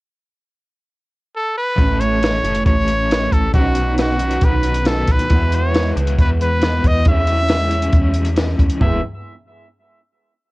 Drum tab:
HH |----------------|x-x-x-xxx-x-x-x-|x-x-x-xxx-xxx-xx|x-x-x-xxx-x-x-x-|
SD |----------------|----o-------o---|----o-------o-o-|----o-------o---|
FT |----------------|----------------|----------------|----------------|
BD |----------------|o-------o-----o-|o-------o-----o-|o-------o-----o-|

HH |x-x-x-xxx-xxx-xx|----------------|
SD |----o-------o---|----------------|
FT |----------------|o---------------|
BD |o-------o-----o-|o---------------|